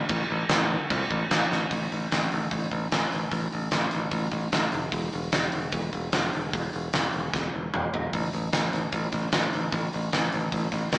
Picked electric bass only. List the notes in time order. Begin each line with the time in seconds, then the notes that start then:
0.10 A1
0.30 A1
0.51 A1
0.91 C2
1.10 A1
1.31 A1
1.51 A1
1.71 A1
1.92 A1
2.12 A1
2.33 A1
2.52 A1
2.71 A1
2.93 A1
3.13 A1
3.32 A1
3.53 A1
3.73 A1
3.93 A1
4.12 A1
4.32 A1
4.53 A1
4.73 F1
4.92 E1
5.13 E1
5.34 E1
5.53 E1
5.73 E1
5.93 E1
6.15 E1
6.35 E1
6.53 E1
6.74 E1
6.94 E1
7.14 E1
7.34 E1
7.54 E1
7.74 E1
7.93 E1
8.13 A1
8.33 A1
8.53 A1
8.73 A1
8.93 A1
9.13 A1
9.34 A1
9.54 A1
9.73 A1
9.94 A1
10.14 A1
10.34 A1
10.53 A1
10.72 A1
10.93 A1